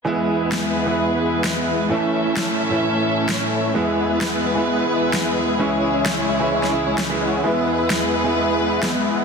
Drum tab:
SD |----o-------o---|----o-------o---|----o-------o---|----o----o--o---|

SD |----o-------o---|